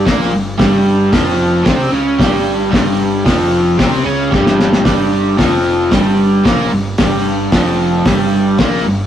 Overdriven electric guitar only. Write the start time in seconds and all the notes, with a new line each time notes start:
0.06 A#2 A#3
0.33 G2
0.58 G2 G3
1.12 F2 F3
1.64 C3 C4
1.91 C#3 C#4
2.18 G2 G3
2.71 G2 G3
3.25 F2 F3
3.78 C3 C4
4.04 C#3 C#4
4.30 G2 G3
4.85 G2 G3
5.37 F2 F3
5.91 G2 G3
6.44 A#2 A#3
6.72 G2
6.99 G2 G3
7.52 F2 F3
8.06 G2 G3
8.59 A#2 A#3
8.86 G2